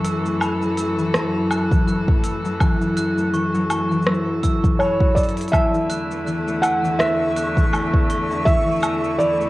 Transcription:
0.00 5.49 F#2 medium
0.00 0.40 E3 medium
0.00 5.49 E3 medium
0.00 0.25 A3 loud
0.00 5.49 A4 medium
0.04 0.61 F#3 medium
0.04 0.40 E6 loud
0.04 open hi-hat medium
0.04 cabasa medium
0.25 0.77 A3 medium
0.25 cabasa soft
0.40 0.97 E3 medium
0.40 0.76 B5 medium
0.40 cabasa soft
0.40 low woodblock medium
0.62 1.13 F#3 loud
0.62 cabasa soft
0.77 1.50 A3 medium
0.77 1.00 E6 medium
0.77 open hi-hat medium
0.77 cabasa medium
0.98 1.70 E3 medium
0.98 cabasa soft
1.14 1.86 F#3 loud
1.14 1.49 A5 medium
1.14 cross-stick medium
1.14 cabasa soft
1.50 2.07 A3 medium
1.50 1.73 F#6 medium
1.50 cabasa medium
1.50 low woodblock medium
1.71 2.59 E3 medium
1.71 kick loud
1.71 cabasa soft
1.87 2.43 F#3 medium
1.87 2.22 F#6 medium
1.87 cabasa soft
2.08 3.17 A3 loud
2.08 kick loud
2.23 2.59 E6 medium
2.23 open hi-hat medium
2.23 cabasa medium
2.44 2.96 F#3 loud
2.44 cabasa soft
2.60 2.80 E3 loud
2.60 2.96 F#6 medium
2.60 kick loud
2.60 cabasa soft
2.60 low woodblock medium
2.81 3.32 E3 medium
2.81 cabasa soft
2.97 3.53 F#3 medium
2.97 3.32 F#6 loud
2.97 open hi-hat medium
2.97 cabasa medium
3.17 3.70 A3 medium
3.17 cabasa soft
3.34 3.90 E3 medium
3.34 3.56 C#6 loud
3.34 cabasa soft
3.54 4.06 F#3 loud
3.54 cabasa soft
3.70 5.90 A3 medium
3.70 4.05 C#6 loud
3.70 open hi-hat medium
3.70 cabasa medium
3.70 low woodblock medium
3.91 4.42 E3 loud
3.91 cabasa soft
4.02 cabasa soft
4.06 4.79 F#3 loud
4.06 4.42 E6 medium
4.06 cross-stick medium
4.14 cabasa soft
4.43 4.63 E3 medium
4.43 4.78 E6 loud
4.43 kick medium
4.43 open hi-hat medium
4.43 cabasa medium
4.64 5.53 E3 medium
4.64 kick loud
4.64 cabasa soft
4.79 5.58 F#3 medium
4.79 5.17 C#5 medium
4.79 5.15 B5 medium
4.79 cabasa soft
4.79 low woodblock medium
5.01 7.45 F#4 loud
5.01 kick loud
5.15 7.36 A4 medium
5.15 5.24 D5 medium
5.15 5.40 E6 medium
5.15 kick medium
5.15 open hi-hat soft
5.15 cabasa medium
5.24 open hi-hat soft
5.29 open hi-hat soft
5.37 7.99 E4 medium
5.37 open hi-hat medium
5.37 cabasa soft
5.41 open hi-hat medium
5.48 6.66 E5 loud
5.48 open hi-hat medium
5.53 9.50 E2 medium
5.53 9.50 D3 medium
5.53 5.73 E3 loud
5.53 9.50 A3 medium
5.53 5.88 A5 medium
5.53 9.50 C#6 medium
5.53 kick loud
5.53 cabasa soft
5.53 low woodblock medium
5.74 6.26 E3 medium
5.74 cabasa soft
5.90 6.47 A3 medium
5.90 6.13 F#6 loud
5.90 open hi-hat medium
5.90 cabasa medium
6.11 6.63 B3 medium
6.11 cabasa soft
6.27 6.83 E3 medium
6.27 6.62 F#6 medium
6.27 cabasa soft
6.47 6.99 A3 loud
6.47 cabasa soft
6.62 7.36 B3 medium
6.62 6.97 F#5 loud
6.62 6.98 E6 medium
6.62 open hi-hat medium
6.62 cabasa medium
6.62 low woodblock medium
6.84 7.56 E3 loud
6.84 cabasa soft
6.99 7.73 A3 loud
6.99 8.44 E5 loud
6.99 7.35 F#6 medium
6.99 cross-stick medium
6.99 cabasa soft
7.36 7.93 B3 medium
7.36 7.71 F#6 loud
7.36 open hi-hat medium
7.36 cabasa medium
7.57 8.45 E3 medium
7.57 kick loud
7.57 cabasa soft
7.73 8.82 A3 medium
7.73 7.96 C#6 loud
7.73 cabasa soft
7.73 low woodblock medium
7.93 9.03 B3 loud
7.93 kick loud
8.10 8.45 C#6 loud
8.10 open hi-hat medium
8.30 9.50 D4 loud
8.30 cabasa soft
8.45 8.65 E3 loud
8.45 9.15 E5 loud
8.45 8.81 E6 medium
8.45 kick loud
8.45 cabasa soft
8.66 9.18 E3 medium
8.66 cabasa soft
8.72 cabasa soft
8.76 cabasa soft
8.80 9.39 A3 medium
8.80 9.18 E6 loud
8.80 open hi-hat medium
8.80 cabasa soft
8.80 low woodblock medium
8.84 cabasa medium
9.03 9.50 B3 medium
9.03 cabasa soft
9.19 9.50 E3 medium
9.19 9.50 D5 medium
9.19 9.50 B5 medium
9.19 cabasa soft
9.40 9.50 A3 loud
9.40 cabasa soft

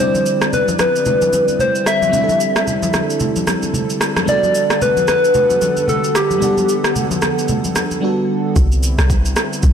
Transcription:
0.00 4.24 D3 medium
0.00 2.07 G3 medium
0.00 4.24 G3 medium
0.00 2.08 C4 medium
0.00 4.24 C4 medium
0.00 2.09 D4 medium
0.00 4.24 E4 medium
0.00 2.10 E4 medium
0.00 0.49 C5 medium
0.00 2.11 D5 medium
0.15 high conga medium
0.15 shaker soft
0.26 shaker medium
0.42 cross-stick medium
0.42 shaker medium
0.53 0.65 B4 medium
0.53 low conga medium
0.53 shaker medium
0.68 high conga medium
0.68 shaker medium
0.79 1.62 B4 loud
0.79 cross-stick medium
0.79 high conga medium
0.79 shaker medium
0.96 shaker medium
1.05 low conga medium
1.05 shaker medium
1.22 high conga medium
1.22 shaker medium
1.33 high conga medium
1.33 shaker medium
1.48 high conga soft
1.48 shaker soft
1.59 1.87 C5 loud
1.59 low conga medium
1.59 shaker medium
1.75 shaker medium
1.86 2.90 E5 loud
1.86 cross-stick medium
1.86 shaker medium
2.02 high conga medium
2.02 shaker soft
2.09 4.22 G3 medium
2.09 4.23 C4 medium
2.09 low conga medium
2.09 shaker medium
2.13 4.24 D4 medium
2.13 4.25 E4 medium
2.13 2.23 G4 medium
2.13 8.52 A4 medium
2.24 4.29 A4 medium
2.29 high conga medium
2.29 shaker soft
2.40 shaker medium
2.56 cross-stick loud
2.56 shaker medium
2.67 low conga medium
2.67 shaker medium
2.83 high conga medium
2.83 shaker medium
2.93 cross-stick medium
2.93 high conga medium
2.93 shaker medium
3.10 shaker medium
3.20 low conga medium
3.20 shaker medium
3.36 high conga medium
3.36 shaker medium
3.47 cross-stick medium
3.47 high conga medium
3.47 shaker medium
3.63 high conga soft
3.63 shaker soft
3.74 low conga medium
3.74 shaker medium
3.90 shaker medium
4.01 cross-stick loud
4.01 shaker medium
4.17 cross-stick medium
4.17 high conga medium
4.17 shaker medium
4.24 6.36 G3 medium
4.24 6.37 B3 medium
4.24 6.38 D4 medium
4.24 low conga medium
4.24 shaker medium
4.28 8.52 D3 medium
4.28 8.52 G3 medium
4.28 8.52 B3 medium
4.28 6.39 F#4 medium
4.28 6.40 A4 medium
4.28 4.84 D5 loud
4.28 8.52 F#5 medium
4.43 high conga medium
4.43 shaker soft
4.55 shaker medium
4.70 cross-stick loud
4.70 shaker medium
4.82 5.08 B4 loud
4.82 low conga medium
4.82 shaker medium
4.97 high conga medium
4.97 shaker medium
5.08 5.91 B4 loud
5.08 cross-stick medium
5.08 high conga medium
5.08 shaker medium
5.24 shaker medium
5.34 low conga medium
5.34 shaker medium
5.50 high conga medium
5.50 shaker medium
5.61 high conga medium
5.61 shaker medium
5.77 high conga soft
5.77 shaker soft
5.88 6.18 A4 medium
5.88 low conga medium
5.88 shaker medium
6.04 shaker medium
6.15 7.23 G4 medium
6.15 cross-stick loud
6.15 shaker medium
6.31 high conga medium
6.31 shaker medium
6.38 7.97 G3 medium
6.38 7.98 B3 medium
6.38 7.99 D4 medium
6.38 low conga medium
6.38 shaker medium
6.44 8.01 A4 medium
6.44 8.00 F#5 medium
6.57 high conga medium
6.57 shaker soft
6.69 shaker medium
6.84 cross-stick medium
6.84 shaker medium
6.96 low conga medium
6.96 shaker medium
7.11 high conga medium
7.11 shaker medium
7.22 cross-stick medium
7.22 high conga medium
7.22 shaker medium
7.39 shaker medium
7.48 low conga medium
7.48 shaker medium
7.64 high conga medium
7.64 shaker medium
7.76 cross-stick medium
7.76 high conga medium
7.76 shaker medium
7.91 high conga soft
7.91 shaker soft
8.01 8.55 G3 medium
8.01 8.56 B3 medium
8.01 8.56 D4 medium
8.01 8.57 F#4 medium
8.01 8.57 A4 medium
8.56 8.96 C2 loud
8.56 9.73 D3 medium
8.56 9.73 G3 medium
8.56 9.73 B3 medium
8.56 9.73 C4 medium
8.56 9.73 E4 loud
8.56 kick loud
8.56 shaker medium
8.72 shaker soft
8.83 shaker loud
8.98 9.35 C2 medium
8.98 cross-stick loud
8.98 shaker medium
9.10 kick loud
9.10 shaker medium
9.25 shaker medium
9.36 cross-stick medium
9.36 shaker medium
9.53 shaker medium
9.63 9.73 B1 loud
9.63 kick loud
9.63 shaker medium

